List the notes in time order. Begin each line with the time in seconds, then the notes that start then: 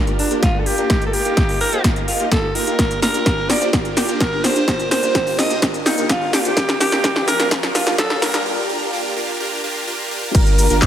0.07 G1 A#3 D4 F4 G4 A#4, closed hi-hat
0.19 D4, open hi-hat
0.31 G1 A#3 D4 F4 G4 A#4, closed hi-hat
0.43 F4, kick, snare, closed hi-hat
0.55 G1 A#3 D4 F4 G4 A#4
0.59 A4
0.66 G4, open hi-hat
0.78 G2 A#3 D4 F4 G4 A#4, closed hi-hat
0.90 D#1 A#3 D#4 F4 G4 A#4, kick, snare, closed hi-hat
1.02 closed hi-hat
1.06 A4
1.13 G4, open hi-hat
1.25 D#1 A#3 D#4 F4 G4 A#4, closed hi-hat
1.37 kick, snare, closed hi-hat
1.49 D#1 A#3 D#4 F4 G4 A#4, open hi-hat
1.61 A#4, open hi-hat
1.73 D#1 A#3 D#4 F4 G4 C5, closed hi-hat
1.84 A#3 D#4 F4 G4 A#4, kick, snare, closed hi-hat
1.96 A#3 D#4 F4 G4 A#4, closed hi-hat
2.08 D#1 A#3 D#4 F4 G4 A#4, open hi-hat
2.20 D#1 A#3 D#4 F4 G4 D#5, closed hi-hat
2.32 D#2 A#3 D#4 F4 G4 A4 A#4, kick, snare, closed hi-hat
2.55 D#2 A#3 D#4 F4 G4 A#4 D#5, open hi-hat
2.67 D#2 A#3 D#4 F4 G4 A#4, closed hi-hat
2.79 G1 A#3 D4 F4 G4 A#4, kick, snare, closed hi-hat, riser, shaker
2.91 closed hi-hat, shaker
3.02 A#4, snare, open hi-hat, shaker
3.14 G1 A#3 D4 F4 G4 A#4, closed hi-hat, shaker
3.26 kick, snare, closed hi-hat, shaker
3.38 G1 A#3 D4 F4 G4 A#4
3.50 D5, snare, open hi-hat, shaker
3.61 G1 A#3 D4 F4 G4 C5, closed hi-hat, shaker
3.73 G1 A#3 D4 F4 G4 A#4, kick, snare, closed hi-hat, shaker
3.85 closed hi-hat
3.97 G4, snare, open hi-hat, shaker
4.09 G1 A#3 D4 F4 G4 A#4, closed hi-hat, shaker
4.20 A#4, kick, snare, closed hi-hat, shaker
4.32 G2 A#3 D4 F4 G4 A#4
4.44 C5, snare, open hi-hat, shaker
4.56 G2 A#3 D4 F4 G4 C5, closed hi-hat, shaker
4.68 C2 A#3 D4 F4 G4 A#4, kick, snare, closed hi-hat, shaker
4.80 closed hi-hat, shaker
4.91 C5, snare, open hi-hat, shaker
5.03 C2 A#3 D4 F4 G4 A#4, closed hi-hat, shaker
5.15 kick, snare, closed hi-hat, shaker
5.27 C2 A#3 D4 F4 G4 A#4, open hi-hat, shaker
5.39 D#5, snare, open hi-hat, shaker
5.50 C2 A#3 D4 F4 G4 C5, closed hi-hat, shaker
5.62 C2 A#3 D4 F4 G4 A#4, kick, snare, closed hi-hat, shaker
5.74 closed hi-hat, shaker
5.86 D#4, snare, open hi-hat, shaker
5.98 C2 A#3 D4 F4 G4 A#4, closed hi-hat, shaker
6.09 F4, kick, snare, closed hi-hat, shaker
6.21 C2 A#3 D4 F4 G4 A#4
6.33 G4, snare, open hi-hat, shaker
6.40 F4
6.45 G1 A#3 D4 F4 G4 C5, closed hi-hat, shaker
6.57 G1 A#3 D4 F4 G4 A#4, kick, snare, closed hi-hat, shaker
6.69 snare, closed hi-hat, shaker
6.80 G4, snare, open hi-hat, shaker
6.92 A#3 D4 F4 G4 A#4, snare, closed hi-hat, shaker
7.04 G1 A#3 D4 F4 G4 A#4, kick, snare, closed hi-hat, shaker
7.16 snare
7.28 A#4, snare, open hi-hat, shaker
7.39 A#3 D4 F4 G4 A#4, snare, closed hi-hat, shaker
7.51 A#3 D4 F4 G4 A#4, kick, snare, closed hi-hat, shaker
7.63 snare, closed hi-hat
7.75 F4, snare, open hi-hat, shaker
7.87 A#3 D4 F4 G4 A#4, snare, closed hi-hat, shaker
7.98 A#3 D4 F4 G4 A4 A#4, kick, snare, closed hi-hat, shaker
8.10 snare
8.22 A#4, snare, open hi-hat, shaker
8.34 A#3 D4 F4 G4 A#4, snare, closed hi-hat, shaker
8.46 A#3 D4 F4 G4 A#4
8.69 A#3 D4 F4 G4 A#4
8.93 A#3 D4 F4 G4 A#4
9.17 A#3 D4 F4 G4 A#4
9.40 A#3 D4 F4 G4 A#4
9.64 A#3 D4 F4 G4 A#4
9.87 A#3 D4 F4 G4 A#4
10.11 A#3 D4 F4 G4 A#4
10.35 G1 A#3 D4 F4 G4 A#4, kick, closed hi-hat, crash, shaker
10.47 closed hi-hat, shaker
10.58 open hi-hat, shaker
10.70 G1 A#3 D4 F4 G4 A#4, closed hi-hat, shaker
10.82 kick, clap, closed hi-hat, shaker